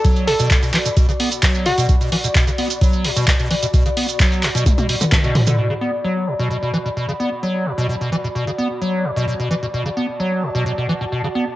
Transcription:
0.00 5.57 F#4 medium
0.00 5.58 D5 medium
0.00 5.58 B5 medium
0.04 0.29 F#3 medium
0.04 kick loud
0.04 closed hi-hat medium
0.04 maracas medium
0.16 closed hi-hat soft
0.16 maracas soft
0.28 0.34 B2 medium
0.28 0.74 A4 medium
0.28 open hi-hat loud
0.40 0.49 B2 loud
0.40 closed hi-hat medium
0.40 maracas medium
0.51 kick loud
0.51 clap loud
0.51 closed hi-hat medium
0.51 maracas medium
0.63 0.72 B2 medium
0.63 closed hi-hat soft
0.63 maracas soft
0.74 0.78 E3 loud
0.74 clap medium
0.74 open hi-hat medium
0.85 0.89 B2 medium
0.85 closed hi-hat medium
0.85 maracas medium
0.97 1.07 B2 medium
0.97 kick loud
0.97 closed hi-hat medium
0.97 maracas medium
1.09 1.12 C#3 medium
1.09 closed hi-hat soft
1.09 maracas soft
1.20 1.30 B3 medium
1.20 open hi-hat loud
1.32 closed hi-hat medium
1.32 maracas medium
1.43 1.67 F#3 medium
1.43 kick loud
1.43 clap loud
1.43 closed hi-hat medium
1.43 maracas medium
1.55 closed hi-hat soft
1.55 maracas soft
1.66 1.73 B2 medium
1.66 2.12 F#4 medium
1.66 open hi-hat medium
1.78 1.87 B2 loud
1.78 closed hi-hat medium
1.78 maracas medium
1.89 1.96 B2 medium
1.89 kick loud
1.89 closed hi-hat medium
1.89 maracas medium
2.01 2.10 B2 medium
2.01 closed hi-hat soft
2.01 maracas soft
2.12 2.16 E3 loud
2.12 open hi-hat loud
2.24 2.28 B2 medium
2.24 closed hi-hat medium
2.24 maracas medium
2.35 2.45 B2 medium
2.35 kick loud
2.35 clap loud
2.35 closed hi-hat medium
2.35 maracas medium
2.47 2.51 C#3 medium
2.47 closed hi-hat soft
2.47 maracas soft
2.58 2.68 B3 medium
2.58 open hi-hat medium
2.70 closed hi-hat medium
2.70 maracas medium
2.81 3.06 F#3 medium
2.81 kick loud
2.81 closed hi-hat medium
2.81 maracas medium
2.93 closed hi-hat soft
2.93 maracas soft
3.04 3.11 B2 medium
3.04 open hi-hat loud
3.16 3.26 B2 loud
3.16 closed hi-hat medium
3.16 maracas medium
3.28 3.34 B2 medium
3.28 kick loud
3.28 clap loud
3.28 closed hi-hat medium
3.28 maracas medium
3.39 3.49 B2 medium
3.39 closed hi-hat soft
3.39 maracas soft
3.51 3.55 E3 loud
3.51 open hi-hat medium
3.63 3.66 B2 medium
3.63 closed hi-hat medium
3.63 maracas medium
3.74 3.84 B2 medium
3.74 kick loud
3.74 closed hi-hat medium
3.74 maracas medium
3.86 3.89 C#3 medium
3.86 closed hi-hat soft
3.86 maracas soft
3.97 4.07 B3 medium
3.97 open hi-hat loud
4.09 closed hi-hat medium
4.09 maracas medium
4.20 4.45 F#3 medium
4.20 kick loud
4.20 clap loud
4.20 closed hi-hat medium
4.20 maracas medium
4.32 closed hi-hat soft
4.32 maracas soft
4.43 4.50 B2 medium
4.43 clap medium
4.43 open hi-hat medium
4.55 4.64 B2 loud
4.55 closed hi-hat medium
4.55 maracas medium
4.66 4.73 B2 medium
4.66 kick loud
4.66 closed hi-hat medium
4.66 high tom medium
4.66 maracas medium
4.78 4.87 B2 medium
4.78 closed hi-hat soft
4.78 high tom medium
4.78 maracas soft
4.89 4.96 B2 medium
4.89 open hi-hat loud
5.01 5.05 D3 medium
5.01 closed hi-hat medium
5.01 mid tom medium
5.01 maracas medium
5.12 5.16 B2 loud
5.12 kick loud
5.12 clap loud
5.12 closed hi-hat medium
5.12 mid tom medium
5.12 maracas medium
5.24 5.37 B2 loud
5.24 closed hi-hat soft
5.24 maracas soft
5.35 5.42 F#3 medium
5.35 mid tom loud
5.35 open hi-hat medium
5.47 5.56 D3 medium
5.47 closed hi-hat medium
5.47 mid tom medium
5.47 maracas medium
5.58 5.68 B2 medium
5.58 11.56 F#4 medium
5.70 5.74 C#3 medium
5.70 11.56 D5 medium
5.70 9.14 B5 medium
5.81 5.91 B3 medium
6.04 6.29 F#3 medium
6.27 6.34 B2 medium
6.39 6.49 B2 medium
6.51 6.57 B2 medium
6.63 6.72 B2 medium
6.74 6.78 E3 loud
6.86 6.89 B2 medium
6.97 7.07 B2 medium
7.09 7.12 C#3 medium
7.20 7.30 B3 medium
7.43 7.68 F#3 medium
7.66 7.73 B2 medium
7.78 7.87 B2 loud
7.89 7.96 B2 medium
8.01 8.10 B2 medium
8.12 8.16 E3 medium
8.24 8.28 B2 medium
8.35 8.45 B2 medium
8.47 8.51 C#3 medium
8.58 8.68 B3 medium
8.81 9.06 F#3 medium
9.00 11.56 A5 medium
9.04 9.11 B2 medium
9.16 9.26 B2 loud
9.28 9.34 B2 medium
9.39 9.49 B2 medium
9.51 9.55 E3 loud
9.63 9.66 B2 medium
9.74 9.84 B2 medium
9.86 9.89 C#3 medium
9.97 10.07 B3 medium
10.20 10.44 F#3 medium
10.43 10.49 B2 medium
10.55 10.64 B2 loud
10.66 10.73 B2 medium
10.78 10.87 B2 medium
10.89 10.93 E3 loud
11.01 11.05 B2 medium
11.12 11.22 B2 medium
11.24 11.28 C#3 medium
11.35 11.45 B3 medium

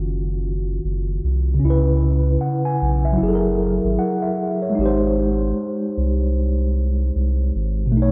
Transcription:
0.00 0.80 F#1 medium
0.00 1.54 D#3 medium
0.00 1.56 C#4 medium
0.00 1.59 F4 medium
0.00 1.62 F#4 medium
0.84 1.20 F#1 loud
1.24 1.59 C2 loud
1.54 3.13 C#3 medium
1.60 2.38 C#2 loud
1.60 3.15 C#4 medium
1.65 3.16 E4 medium
1.70 3.21 B4 medium
2.41 2.63 F#5 medium
2.65 3.03 G#5 medium
2.82 3.17 B1 medium
3.05 3.42 E5 medium
3.13 4.71 F#3 medium
3.17 3.80 F#1 loud
3.17 4.73 E4 medium
3.23 4.76 G#4 medium
3.28 3.32 A4 medium
3.35 4.82 A#4 medium
3.84 3.98 G#1 loud
3.99 4.21 F#5 medium
4.22 4.60 E5 medium
4.62 5.00 C#5 medium
4.70 7.86 G#3 medium
4.75 5.53 G#1 loud
4.75 7.88 D#4 medium
4.81 7.91 G4 medium
4.86 7.93 C5 medium
5.97 7.11 C2 medium
7.15 7.51 C2 loud
7.55 7.95 G#1 loud
7.86 8.12 B2 medium
7.92 8.12 B1 loud
7.92 8.12 A3 medium
7.97 8.12 D#4 medium
8.02 8.12 C#5 medium

